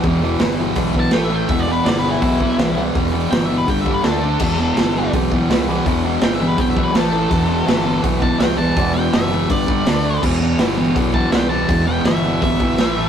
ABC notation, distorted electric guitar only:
X:1
M:4/4
L:1/8
Q:1/4=165
K:Em
V:1 name="Distorted electric guitar" clef=bass
[E,,B,,E,] [E,,B,,E,] [E,,B,,E,] [E,,B,,E,] [E,,B,,E,] [E,,B,,E,] [A,,E,A,] [A,,E,A,] | [E,,B,,E,] [E,,B,,E,] [E,,B,,E,] [E,,B,,E,] [E,,B,,E,] [E,,B,,E,] [E,,B,,E,] [E,,B,,E,] | [E,,B,,E,] [E,,B,,E,] [E,,B,,E,] [E,,B,,E,] [G,,D,G,] [G,,D,G,] [D,A,D] [D,A,D] | [E,,B,,E,] [E,,B,,E,] [E,,B,,E,] [E,,B,,E,] [E,,B,,E,] [E,,B,,E,] [E,,B,,E,] [E,,B,,E,] |
[E,,B,,E,] [E,,B,,E,] [E,,B,,E,] [E,,B,,E,] [E,,B,,E,] [E,,B,,E,] [A,,E,A,] [A,,E,A,] | [E,,B,,E,] [E,,B,,E,] [E,,B,,E,] [E,,B,,E,] [E,,B,,E,] [E,,B,,E,] [E,,B,,E,] [E,,B,,E,] | [E,,B,,E,] [E,,B,,E,] [E,,B,,E,] [E,,B,,E,] [G,,D,G,] [G,,D,G,] [D,A,D] [D,A,D] | [E,,B,,E,] [E,,B,,E,] [E,,B,,E,] [E,,B,,E,] [E,,B,,E,] [E,,B,,E,] [E,,B,,E,] [E,,B,,E,] |
[E,,B,,E,] [E,,B,,E,] [E,,B,,E,] [E,,B,,E,] [E,,B,,E,] [E,,B,,E,] [A,,E,A,] [A,,E,A,] |]